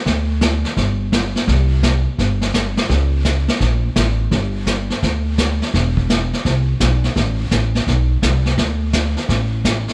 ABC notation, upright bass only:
X:1
M:4/4
L:1/8
Q:"Swing" 1/4=169
K:Am
V:1 name="Upright bass" clef=bass
D,,4 G,,,4 | C,,4 G,,,4 | ^C,,4 _B,,,2 A,,,2 | G,,,4 D,,4 |
E,,,4 C,,2 B,,,2 | A,,,2 A,,,2 B,,,2 C,,2 | D,,4 A,,,4 |]